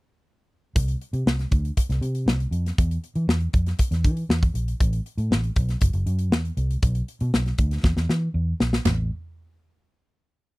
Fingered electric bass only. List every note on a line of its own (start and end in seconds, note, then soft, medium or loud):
0.76 0.94 C2 medium
1.13 1.23 C3 medium
1.26 1.44 C2 medium
1.51 1.70 D2 medium
1.89 1.99 C2 medium
2.01 2.28 C3 medium
2.26 2.45 C2 medium
2.51 2.70 F2 medium
2.79 2.97 E2 loud
3.16 3.25 E3 loud
3.28 3.46 E2 medium
3.54 3.72 F2 medium
3.91 4.06 E2 medium
4.05 4.23 E3 medium
4.29 4.48 E2 medium
4.54 4.73 A#1 medium
4.80 4.99 A1 loud
5.18 5.32 A2 loud
5.31 5.49 A1 medium
5.56 5.74 B1 medium
5.81 5.91 F#1 medium
5.94 6.03 F#1 medium
6.06 6.31 F#2 loud
6.31 6.50 E2 medium
6.57 6.75 C2 medium
6.82 7.01 B1 loud
7.21 7.30 B2 loud
7.33 7.52 B1 medium
7.58 7.77 D2 loud
7.83 7.93 E2 medium
7.97 8.06 E2 medium
8.09 8.27 E3 medium
8.34 8.52 E2 medium
8.60 8.78 A#1 medium
8.86 9.09 A1 medium